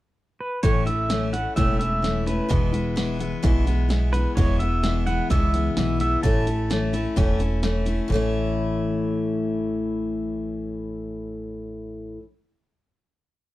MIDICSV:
0, 0, Header, 1, 5, 480
1, 0, Start_track
1, 0, Key_signature, 3, "major"
1, 0, Tempo, 467290
1, 648, Time_signature, 4, 2, 24, 8
1, 13908, End_track
2, 0, Start_track
2, 0, Title_t, "Pedal steel guitar"
2, 0, Program_c, 0, 26
2, 416, Note_on_c, 0, 71, 74
2, 647, Note_on_c, 0, 73, 85
2, 659, Note_off_c, 0, 71, 0
2, 885, Note_off_c, 0, 73, 0
2, 889, Note_on_c, 0, 76, 75
2, 1363, Note_off_c, 0, 76, 0
2, 1367, Note_on_c, 0, 78, 72
2, 1599, Note_off_c, 0, 78, 0
2, 1603, Note_on_c, 0, 76, 84
2, 1829, Note_off_c, 0, 76, 0
2, 1841, Note_on_c, 0, 76, 84
2, 2331, Note_on_c, 0, 71, 77
2, 2340, Note_off_c, 0, 76, 0
2, 4227, Note_off_c, 0, 71, 0
2, 4239, Note_on_c, 0, 71, 76
2, 4473, Note_on_c, 0, 73, 89
2, 4491, Note_off_c, 0, 71, 0
2, 4703, Note_off_c, 0, 73, 0
2, 4718, Note_on_c, 0, 76, 89
2, 5199, Note_off_c, 0, 76, 0
2, 5203, Note_on_c, 0, 78, 87
2, 5448, Note_off_c, 0, 78, 0
2, 5452, Note_on_c, 0, 76, 93
2, 6161, Note_off_c, 0, 76, 0
2, 6173, Note_on_c, 0, 76, 92
2, 6393, Note_off_c, 0, 76, 0
2, 6398, Note_on_c, 0, 81, 98
2, 7798, Note_off_c, 0, 81, 0
2, 13908, End_track
3, 0, Start_track
3, 0, Title_t, "Steel-string acoustic guitar"
3, 0, Program_c, 1, 25
3, 645, Note_on_c, 1, 45, 74
3, 652, Note_on_c, 1, 52, 86
3, 656, Note_on_c, 1, 57, 80
3, 663, Note_on_c, 1, 61, 73
3, 666, Note_on_c, 1, 64, 89
3, 869, Note_off_c, 1, 64, 0
3, 882, Note_on_c, 1, 64, 48
3, 887, Note_off_c, 1, 45, 0
3, 888, Note_off_c, 1, 61, 0
3, 891, Note_off_c, 1, 52, 0
3, 893, Note_off_c, 1, 57, 0
3, 900, Note_on_c, 1, 61, 41
3, 911, Note_on_c, 1, 57, 40
3, 1120, Note_off_c, 1, 57, 0
3, 1124, Note_on_c, 1, 52, 51
3, 1125, Note_off_c, 1, 64, 0
3, 1129, Note_off_c, 1, 61, 0
3, 1133, Note_on_c, 1, 57, 55
3, 1141, Note_on_c, 1, 61, 59
3, 1151, Note_on_c, 1, 64, 59
3, 1352, Note_off_c, 1, 64, 0
3, 1364, Note_on_c, 1, 64, 42
3, 1367, Note_off_c, 1, 52, 0
3, 1368, Note_off_c, 1, 61, 0
3, 1371, Note_off_c, 1, 57, 0
3, 1380, Note_on_c, 1, 61, 38
3, 1391, Note_on_c, 1, 57, 36
3, 1602, Note_off_c, 1, 57, 0
3, 1604, Note_on_c, 1, 45, 75
3, 1607, Note_off_c, 1, 64, 0
3, 1608, Note_off_c, 1, 61, 0
3, 1611, Note_on_c, 1, 52, 70
3, 1615, Note_on_c, 1, 57, 73
3, 1621, Note_on_c, 1, 61, 81
3, 1623, Note_on_c, 1, 64, 86
3, 1831, Note_off_c, 1, 64, 0
3, 1843, Note_on_c, 1, 64, 44
3, 1846, Note_off_c, 1, 61, 0
3, 1847, Note_off_c, 1, 45, 0
3, 1850, Note_off_c, 1, 52, 0
3, 1852, Note_off_c, 1, 57, 0
3, 1858, Note_on_c, 1, 61, 49
3, 1869, Note_on_c, 1, 57, 41
3, 2079, Note_on_c, 1, 52, 51
3, 2081, Note_off_c, 1, 57, 0
3, 2086, Note_off_c, 1, 61, 0
3, 2086, Note_off_c, 1, 64, 0
3, 2093, Note_on_c, 1, 57, 50
3, 2098, Note_on_c, 1, 61, 49
3, 2108, Note_on_c, 1, 64, 55
3, 2311, Note_off_c, 1, 64, 0
3, 2324, Note_off_c, 1, 52, 0
3, 2324, Note_on_c, 1, 64, 50
3, 2328, Note_off_c, 1, 61, 0
3, 2331, Note_off_c, 1, 57, 0
3, 2340, Note_on_c, 1, 61, 48
3, 2355, Note_on_c, 1, 57, 35
3, 2553, Note_on_c, 1, 40, 71
3, 2561, Note_on_c, 1, 47, 87
3, 2563, Note_off_c, 1, 64, 0
3, 2565, Note_off_c, 1, 57, 0
3, 2566, Note_on_c, 1, 52, 83
3, 2569, Note_on_c, 1, 56, 80
3, 2570, Note_off_c, 1, 61, 0
3, 2574, Note_on_c, 1, 59, 85
3, 2575, Note_on_c, 1, 64, 77
3, 2785, Note_off_c, 1, 64, 0
3, 2795, Note_off_c, 1, 59, 0
3, 2798, Note_on_c, 1, 64, 44
3, 2801, Note_off_c, 1, 40, 0
3, 2803, Note_off_c, 1, 56, 0
3, 2805, Note_off_c, 1, 47, 0
3, 2808, Note_off_c, 1, 52, 0
3, 2808, Note_on_c, 1, 59, 43
3, 2815, Note_on_c, 1, 56, 38
3, 2823, Note_on_c, 1, 52, 36
3, 3025, Note_off_c, 1, 52, 0
3, 3037, Note_off_c, 1, 56, 0
3, 3037, Note_on_c, 1, 52, 59
3, 3043, Note_off_c, 1, 64, 0
3, 3046, Note_off_c, 1, 59, 0
3, 3050, Note_on_c, 1, 56, 65
3, 3058, Note_on_c, 1, 59, 68
3, 3067, Note_on_c, 1, 64, 70
3, 3266, Note_off_c, 1, 64, 0
3, 3277, Note_off_c, 1, 59, 0
3, 3278, Note_on_c, 1, 64, 51
3, 3283, Note_off_c, 1, 52, 0
3, 3283, Note_off_c, 1, 56, 0
3, 3289, Note_on_c, 1, 59, 57
3, 3295, Note_on_c, 1, 56, 49
3, 3305, Note_on_c, 1, 52, 42
3, 3514, Note_off_c, 1, 52, 0
3, 3516, Note_off_c, 1, 56, 0
3, 3518, Note_on_c, 1, 40, 77
3, 3520, Note_off_c, 1, 59, 0
3, 3521, Note_on_c, 1, 47, 79
3, 3523, Note_off_c, 1, 64, 0
3, 3526, Note_on_c, 1, 52, 81
3, 3528, Note_on_c, 1, 56, 84
3, 3532, Note_on_c, 1, 59, 87
3, 3538, Note_on_c, 1, 64, 90
3, 3752, Note_off_c, 1, 64, 0
3, 3760, Note_off_c, 1, 59, 0
3, 3764, Note_off_c, 1, 40, 0
3, 3765, Note_off_c, 1, 47, 0
3, 3765, Note_on_c, 1, 64, 58
3, 3768, Note_off_c, 1, 52, 0
3, 3768, Note_off_c, 1, 56, 0
3, 3772, Note_on_c, 1, 59, 50
3, 3783, Note_on_c, 1, 56, 47
3, 3792, Note_on_c, 1, 52, 47
3, 3980, Note_off_c, 1, 52, 0
3, 3992, Note_on_c, 1, 52, 58
3, 3994, Note_off_c, 1, 56, 0
3, 4004, Note_off_c, 1, 59, 0
3, 4006, Note_on_c, 1, 56, 60
3, 4007, Note_off_c, 1, 64, 0
3, 4016, Note_on_c, 1, 59, 72
3, 4023, Note_on_c, 1, 64, 57
3, 4229, Note_off_c, 1, 64, 0
3, 4240, Note_off_c, 1, 52, 0
3, 4241, Note_off_c, 1, 59, 0
3, 4241, Note_on_c, 1, 64, 57
3, 4247, Note_off_c, 1, 56, 0
3, 4253, Note_on_c, 1, 59, 44
3, 4262, Note_on_c, 1, 56, 47
3, 4273, Note_on_c, 1, 52, 39
3, 4483, Note_off_c, 1, 52, 0
3, 4485, Note_off_c, 1, 64, 0
3, 4486, Note_on_c, 1, 40, 75
3, 4487, Note_off_c, 1, 56, 0
3, 4490, Note_off_c, 1, 59, 0
3, 4490, Note_on_c, 1, 47, 74
3, 4496, Note_on_c, 1, 52, 76
3, 4500, Note_on_c, 1, 56, 85
3, 4503, Note_on_c, 1, 59, 81
3, 4504, Note_on_c, 1, 64, 86
3, 4709, Note_off_c, 1, 64, 0
3, 4720, Note_off_c, 1, 59, 0
3, 4721, Note_on_c, 1, 64, 47
3, 4727, Note_off_c, 1, 40, 0
3, 4729, Note_off_c, 1, 47, 0
3, 4731, Note_off_c, 1, 52, 0
3, 4732, Note_on_c, 1, 59, 42
3, 4734, Note_off_c, 1, 56, 0
3, 4746, Note_on_c, 1, 56, 43
3, 4748, Note_on_c, 1, 52, 35
3, 4949, Note_off_c, 1, 52, 0
3, 4961, Note_on_c, 1, 52, 57
3, 4963, Note_off_c, 1, 56, 0
3, 4964, Note_off_c, 1, 64, 0
3, 4970, Note_off_c, 1, 59, 0
3, 4975, Note_on_c, 1, 56, 56
3, 4982, Note_on_c, 1, 59, 64
3, 4991, Note_on_c, 1, 64, 63
3, 5190, Note_off_c, 1, 64, 0
3, 5202, Note_off_c, 1, 59, 0
3, 5202, Note_on_c, 1, 64, 51
3, 5204, Note_off_c, 1, 52, 0
3, 5211, Note_off_c, 1, 56, 0
3, 5214, Note_on_c, 1, 59, 51
3, 5224, Note_on_c, 1, 56, 40
3, 5232, Note_on_c, 1, 52, 40
3, 5443, Note_on_c, 1, 40, 71
3, 5444, Note_off_c, 1, 64, 0
3, 5445, Note_off_c, 1, 52, 0
3, 5446, Note_off_c, 1, 56, 0
3, 5450, Note_off_c, 1, 59, 0
3, 5450, Note_on_c, 1, 47, 74
3, 5458, Note_on_c, 1, 52, 80
3, 5459, Note_on_c, 1, 56, 79
3, 5461, Note_on_c, 1, 59, 87
3, 5467, Note_on_c, 1, 64, 77
3, 5676, Note_off_c, 1, 64, 0
3, 5684, Note_off_c, 1, 59, 0
3, 5685, Note_off_c, 1, 40, 0
3, 5688, Note_off_c, 1, 47, 0
3, 5688, Note_on_c, 1, 64, 49
3, 5692, Note_off_c, 1, 52, 0
3, 5692, Note_off_c, 1, 56, 0
3, 5697, Note_on_c, 1, 59, 45
3, 5707, Note_on_c, 1, 56, 43
3, 5713, Note_on_c, 1, 52, 40
3, 5913, Note_off_c, 1, 52, 0
3, 5926, Note_on_c, 1, 52, 58
3, 5927, Note_off_c, 1, 56, 0
3, 5927, Note_off_c, 1, 64, 0
3, 5931, Note_off_c, 1, 59, 0
3, 5940, Note_on_c, 1, 56, 53
3, 5946, Note_on_c, 1, 59, 57
3, 5958, Note_on_c, 1, 64, 59
3, 6148, Note_off_c, 1, 64, 0
3, 6160, Note_off_c, 1, 59, 0
3, 6160, Note_on_c, 1, 64, 47
3, 6165, Note_off_c, 1, 52, 0
3, 6168, Note_off_c, 1, 56, 0
3, 6173, Note_on_c, 1, 59, 49
3, 6180, Note_on_c, 1, 56, 40
3, 6192, Note_on_c, 1, 52, 45
3, 6394, Note_off_c, 1, 52, 0
3, 6400, Note_on_c, 1, 45, 74
3, 6402, Note_off_c, 1, 64, 0
3, 6406, Note_on_c, 1, 52, 75
3, 6408, Note_off_c, 1, 56, 0
3, 6409, Note_off_c, 1, 59, 0
3, 6412, Note_on_c, 1, 57, 80
3, 6416, Note_on_c, 1, 61, 78
3, 6423, Note_on_c, 1, 64, 89
3, 6627, Note_off_c, 1, 64, 0
3, 6639, Note_on_c, 1, 64, 47
3, 6642, Note_off_c, 1, 45, 0
3, 6643, Note_off_c, 1, 61, 0
3, 6645, Note_off_c, 1, 52, 0
3, 6648, Note_off_c, 1, 57, 0
3, 6655, Note_on_c, 1, 61, 43
3, 6670, Note_on_c, 1, 57, 43
3, 6880, Note_on_c, 1, 52, 56
3, 6881, Note_off_c, 1, 57, 0
3, 6881, Note_off_c, 1, 64, 0
3, 6887, Note_off_c, 1, 61, 0
3, 6893, Note_on_c, 1, 57, 63
3, 6899, Note_on_c, 1, 61, 60
3, 6909, Note_on_c, 1, 64, 63
3, 7107, Note_off_c, 1, 64, 0
3, 7119, Note_on_c, 1, 64, 58
3, 7120, Note_off_c, 1, 61, 0
3, 7122, Note_off_c, 1, 52, 0
3, 7128, Note_off_c, 1, 57, 0
3, 7133, Note_on_c, 1, 61, 44
3, 7147, Note_on_c, 1, 57, 42
3, 7354, Note_off_c, 1, 57, 0
3, 7356, Note_on_c, 1, 45, 77
3, 7360, Note_off_c, 1, 61, 0
3, 7361, Note_off_c, 1, 64, 0
3, 7361, Note_on_c, 1, 52, 91
3, 7366, Note_on_c, 1, 57, 90
3, 7372, Note_on_c, 1, 61, 98
3, 7373, Note_on_c, 1, 64, 91
3, 7580, Note_off_c, 1, 64, 0
3, 7593, Note_on_c, 1, 64, 55
3, 7597, Note_off_c, 1, 61, 0
3, 7599, Note_off_c, 1, 45, 0
3, 7602, Note_off_c, 1, 52, 0
3, 7604, Note_off_c, 1, 57, 0
3, 7609, Note_on_c, 1, 61, 51
3, 7834, Note_on_c, 1, 52, 62
3, 7837, Note_off_c, 1, 64, 0
3, 7841, Note_off_c, 1, 61, 0
3, 7841, Note_on_c, 1, 57, 57
3, 7853, Note_on_c, 1, 61, 62
3, 7861, Note_on_c, 1, 64, 65
3, 8057, Note_off_c, 1, 64, 0
3, 8069, Note_on_c, 1, 64, 52
3, 8073, Note_off_c, 1, 61, 0
3, 8078, Note_off_c, 1, 52, 0
3, 8082, Note_off_c, 1, 57, 0
3, 8085, Note_on_c, 1, 61, 49
3, 8099, Note_on_c, 1, 57, 41
3, 8298, Note_on_c, 1, 45, 77
3, 8315, Note_off_c, 1, 64, 0
3, 8318, Note_on_c, 1, 52, 77
3, 8323, Note_off_c, 1, 61, 0
3, 8330, Note_off_c, 1, 57, 0
3, 8343, Note_on_c, 1, 57, 80
3, 8360, Note_on_c, 1, 61, 90
3, 8377, Note_on_c, 1, 64, 95
3, 12508, Note_off_c, 1, 45, 0
3, 12529, Note_off_c, 1, 52, 0
3, 12553, Note_off_c, 1, 57, 0
3, 12570, Note_off_c, 1, 61, 0
3, 12587, Note_off_c, 1, 64, 0
3, 13908, End_track
4, 0, Start_track
4, 0, Title_t, "Upright bass"
4, 0, Program_c, 2, 32
4, 653, Note_on_c, 2, 33, 77
4, 1482, Note_off_c, 2, 33, 0
4, 1617, Note_on_c, 2, 28, 79
4, 2444, Note_off_c, 2, 28, 0
4, 2574, Note_on_c, 2, 28, 85
4, 3401, Note_off_c, 2, 28, 0
4, 3532, Note_on_c, 2, 35, 81
4, 4360, Note_off_c, 2, 35, 0
4, 4486, Note_on_c, 2, 28, 85
4, 5316, Note_off_c, 2, 28, 0
4, 5449, Note_on_c, 2, 37, 83
4, 5855, Note_off_c, 2, 37, 0
4, 5927, Note_on_c, 2, 35, 77
4, 6334, Note_off_c, 2, 35, 0
4, 6407, Note_on_c, 2, 33, 81
4, 7234, Note_off_c, 2, 33, 0
4, 7364, Note_on_c, 2, 28, 76
4, 8192, Note_off_c, 2, 28, 0
4, 8320, Note_on_c, 2, 33, 88
4, 12489, Note_off_c, 2, 33, 0
4, 13908, End_track
5, 0, Start_track
5, 0, Title_t, "Drums"
5, 648, Note_on_c, 9, 42, 82
5, 651, Note_on_c, 9, 36, 107
5, 751, Note_off_c, 9, 42, 0
5, 753, Note_off_c, 9, 36, 0
5, 893, Note_on_c, 9, 42, 58
5, 996, Note_off_c, 9, 42, 0
5, 1129, Note_on_c, 9, 38, 115
5, 1129, Note_on_c, 9, 42, 90
5, 1232, Note_off_c, 9, 38, 0
5, 1232, Note_off_c, 9, 42, 0
5, 1373, Note_on_c, 9, 42, 60
5, 1476, Note_off_c, 9, 42, 0
5, 1613, Note_on_c, 9, 42, 80
5, 1615, Note_on_c, 9, 36, 97
5, 1715, Note_off_c, 9, 42, 0
5, 1718, Note_off_c, 9, 36, 0
5, 1857, Note_on_c, 9, 42, 58
5, 1960, Note_off_c, 9, 42, 0
5, 2098, Note_on_c, 9, 38, 98
5, 2098, Note_on_c, 9, 42, 76
5, 2200, Note_off_c, 9, 38, 0
5, 2200, Note_off_c, 9, 42, 0
5, 2337, Note_on_c, 9, 42, 59
5, 2439, Note_off_c, 9, 42, 0
5, 2575, Note_on_c, 9, 36, 102
5, 2577, Note_on_c, 9, 42, 73
5, 2678, Note_off_c, 9, 36, 0
5, 2679, Note_off_c, 9, 42, 0
5, 2813, Note_on_c, 9, 42, 61
5, 2916, Note_off_c, 9, 42, 0
5, 3052, Note_on_c, 9, 38, 112
5, 3052, Note_on_c, 9, 42, 81
5, 3155, Note_off_c, 9, 38, 0
5, 3155, Note_off_c, 9, 42, 0
5, 3292, Note_on_c, 9, 42, 53
5, 3395, Note_off_c, 9, 42, 0
5, 3529, Note_on_c, 9, 42, 70
5, 3530, Note_on_c, 9, 36, 101
5, 3632, Note_off_c, 9, 42, 0
5, 3633, Note_off_c, 9, 36, 0
5, 3773, Note_on_c, 9, 42, 54
5, 3875, Note_off_c, 9, 42, 0
5, 4007, Note_on_c, 9, 38, 101
5, 4007, Note_on_c, 9, 42, 73
5, 4110, Note_off_c, 9, 38, 0
5, 4110, Note_off_c, 9, 42, 0
5, 4251, Note_on_c, 9, 42, 54
5, 4354, Note_off_c, 9, 42, 0
5, 4488, Note_on_c, 9, 36, 103
5, 4488, Note_on_c, 9, 42, 71
5, 4591, Note_off_c, 9, 36, 0
5, 4591, Note_off_c, 9, 42, 0
5, 4727, Note_on_c, 9, 42, 56
5, 4830, Note_off_c, 9, 42, 0
5, 4968, Note_on_c, 9, 38, 117
5, 4968, Note_on_c, 9, 42, 85
5, 5070, Note_off_c, 9, 38, 0
5, 5070, Note_off_c, 9, 42, 0
5, 5208, Note_on_c, 9, 42, 53
5, 5311, Note_off_c, 9, 42, 0
5, 5447, Note_on_c, 9, 36, 94
5, 5448, Note_on_c, 9, 42, 77
5, 5550, Note_off_c, 9, 36, 0
5, 5551, Note_off_c, 9, 42, 0
5, 5689, Note_on_c, 9, 42, 57
5, 5792, Note_off_c, 9, 42, 0
5, 5925, Note_on_c, 9, 38, 110
5, 5925, Note_on_c, 9, 42, 82
5, 6028, Note_off_c, 9, 38, 0
5, 6028, Note_off_c, 9, 42, 0
5, 6164, Note_on_c, 9, 42, 58
5, 6266, Note_off_c, 9, 42, 0
5, 6405, Note_on_c, 9, 42, 79
5, 6407, Note_on_c, 9, 36, 103
5, 6507, Note_off_c, 9, 42, 0
5, 6510, Note_off_c, 9, 36, 0
5, 6647, Note_on_c, 9, 42, 60
5, 6750, Note_off_c, 9, 42, 0
5, 6889, Note_on_c, 9, 38, 112
5, 6889, Note_on_c, 9, 42, 84
5, 6992, Note_off_c, 9, 38, 0
5, 6992, Note_off_c, 9, 42, 0
5, 7127, Note_on_c, 9, 42, 52
5, 7230, Note_off_c, 9, 42, 0
5, 7365, Note_on_c, 9, 36, 97
5, 7365, Note_on_c, 9, 42, 76
5, 7467, Note_off_c, 9, 36, 0
5, 7468, Note_off_c, 9, 42, 0
5, 7601, Note_on_c, 9, 42, 55
5, 7703, Note_off_c, 9, 42, 0
5, 7838, Note_on_c, 9, 38, 102
5, 7838, Note_on_c, 9, 42, 70
5, 7941, Note_off_c, 9, 38, 0
5, 7941, Note_off_c, 9, 42, 0
5, 8077, Note_on_c, 9, 42, 53
5, 8180, Note_off_c, 9, 42, 0
5, 13908, End_track
0, 0, End_of_file